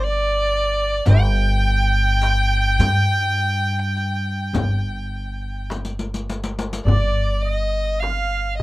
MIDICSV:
0, 0, Header, 1, 7, 480
1, 0, Start_track
1, 0, Tempo, 1162791
1, 436, Time_signature, 10, 3, 24, 8
1, 3560, End_track
2, 0, Start_track
2, 0, Title_t, "Muted trumpet"
2, 0, Program_c, 0, 59
2, 17, Note_on_c, 0, 74, 85
2, 443, Note_on_c, 0, 79, 96
2, 449, Note_off_c, 0, 74, 0
2, 2359, Note_off_c, 0, 79, 0
2, 2833, Note_on_c, 0, 74, 81
2, 3058, Note_off_c, 0, 74, 0
2, 3073, Note_on_c, 0, 75, 68
2, 3096, Note_off_c, 0, 75, 0
2, 3098, Note_on_c, 0, 75, 47
2, 3125, Note_off_c, 0, 75, 0
2, 3127, Note_on_c, 0, 75, 59
2, 3157, Note_off_c, 0, 75, 0
2, 3159, Note_on_c, 0, 75, 48
2, 3186, Note_off_c, 0, 75, 0
2, 3189, Note_on_c, 0, 75, 56
2, 3220, Note_off_c, 0, 75, 0
2, 3222, Note_on_c, 0, 75, 48
2, 3247, Note_off_c, 0, 75, 0
2, 3250, Note_on_c, 0, 75, 67
2, 3301, Note_on_c, 0, 77, 83
2, 3307, Note_off_c, 0, 75, 0
2, 3544, Note_on_c, 0, 75, 77
2, 3550, Note_off_c, 0, 77, 0
2, 3560, Note_off_c, 0, 75, 0
2, 3560, End_track
3, 0, Start_track
3, 0, Title_t, "Violin"
3, 0, Program_c, 1, 40
3, 14, Note_on_c, 1, 74, 95
3, 438, Note_on_c, 1, 79, 99
3, 444, Note_off_c, 1, 74, 0
3, 2356, Note_off_c, 1, 79, 0
3, 2829, Note_on_c, 1, 74, 82
3, 3064, Note_off_c, 1, 74, 0
3, 3064, Note_on_c, 1, 74, 89
3, 3109, Note_off_c, 1, 74, 0
3, 3109, Note_on_c, 1, 75, 89
3, 3303, Note_on_c, 1, 77, 88
3, 3309, Note_off_c, 1, 75, 0
3, 3537, Note_off_c, 1, 77, 0
3, 3539, Note_on_c, 1, 75, 88
3, 3560, Note_off_c, 1, 75, 0
3, 3560, End_track
4, 0, Start_track
4, 0, Title_t, "Upright bass"
4, 0, Program_c, 2, 32
4, 0, Note_on_c, 2, 31, 87
4, 419, Note_off_c, 2, 31, 0
4, 437, Note_on_c, 2, 31, 109
4, 1140, Note_off_c, 2, 31, 0
4, 1152, Note_on_c, 2, 43, 89
4, 1857, Note_off_c, 2, 43, 0
4, 1872, Note_on_c, 2, 31, 90
4, 2817, Note_off_c, 2, 31, 0
4, 2828, Note_on_c, 2, 31, 83
4, 3536, Note_off_c, 2, 31, 0
4, 3560, End_track
5, 0, Start_track
5, 0, Title_t, "Darbuka"
5, 442, Note_on_c, 9, 64, 83
5, 483, Note_off_c, 9, 64, 0
5, 682, Note_on_c, 9, 62, 24
5, 724, Note_off_c, 9, 62, 0
5, 920, Note_on_c, 9, 63, 69
5, 962, Note_off_c, 9, 63, 0
5, 1039, Note_on_c, 9, 62, 28
5, 1081, Note_off_c, 9, 62, 0
5, 1158, Note_on_c, 9, 64, 83
5, 1200, Note_off_c, 9, 64, 0
5, 1637, Note_on_c, 9, 62, 27
5, 1678, Note_off_c, 9, 62, 0
5, 1875, Note_on_c, 9, 64, 81
5, 1916, Note_off_c, 9, 64, 0
5, 2353, Note_on_c, 9, 63, 73
5, 2395, Note_off_c, 9, 63, 0
5, 2834, Note_on_c, 9, 64, 76
5, 2875, Note_off_c, 9, 64, 0
5, 2956, Note_on_c, 9, 62, 22
5, 2997, Note_off_c, 9, 62, 0
5, 3313, Note_on_c, 9, 63, 63
5, 3354, Note_off_c, 9, 63, 0
5, 3429, Note_on_c, 9, 62, 22
5, 3470, Note_off_c, 9, 62, 0
5, 3560, End_track
6, 0, Start_track
6, 0, Title_t, "Frame drum"
6, 439, Note_on_c, 9, 64, 74
6, 481, Note_off_c, 9, 64, 0
6, 1160, Note_on_c, 9, 64, 70
6, 1201, Note_off_c, 9, 64, 0
6, 1880, Note_on_c, 9, 64, 89
6, 1921, Note_off_c, 9, 64, 0
6, 2361, Note_on_c, 9, 64, 62
6, 2402, Note_off_c, 9, 64, 0
6, 2841, Note_on_c, 9, 64, 85
6, 2882, Note_off_c, 9, 64, 0
6, 3318, Note_on_c, 9, 64, 62
6, 3360, Note_off_c, 9, 64, 0
6, 3560, End_track
7, 0, Start_track
7, 0, Title_t, "Riq"
7, 439, Note_on_c, 9, 54, 64
7, 480, Note_off_c, 9, 54, 0
7, 560, Note_on_c, 9, 54, 18
7, 601, Note_off_c, 9, 54, 0
7, 915, Note_on_c, 9, 54, 51
7, 956, Note_off_c, 9, 54, 0
7, 1032, Note_on_c, 9, 54, 18
7, 1073, Note_off_c, 9, 54, 0
7, 1154, Note_on_c, 9, 54, 72
7, 1196, Note_off_c, 9, 54, 0
7, 1394, Note_on_c, 9, 54, 18
7, 1435, Note_off_c, 9, 54, 0
7, 1639, Note_on_c, 9, 54, 19
7, 1680, Note_off_c, 9, 54, 0
7, 1877, Note_on_c, 9, 54, 60
7, 1918, Note_off_c, 9, 54, 0
7, 2358, Note_on_c, 9, 54, 51
7, 2400, Note_off_c, 9, 54, 0
7, 2414, Note_on_c, 9, 54, 57
7, 2455, Note_off_c, 9, 54, 0
7, 2474, Note_on_c, 9, 54, 63
7, 2515, Note_off_c, 9, 54, 0
7, 2535, Note_on_c, 9, 54, 65
7, 2576, Note_off_c, 9, 54, 0
7, 2599, Note_on_c, 9, 54, 73
7, 2640, Note_off_c, 9, 54, 0
7, 2657, Note_on_c, 9, 54, 77
7, 2698, Note_off_c, 9, 54, 0
7, 2719, Note_on_c, 9, 54, 81
7, 2760, Note_off_c, 9, 54, 0
7, 2778, Note_on_c, 9, 54, 81
7, 2819, Note_off_c, 9, 54, 0
7, 3560, End_track
0, 0, End_of_file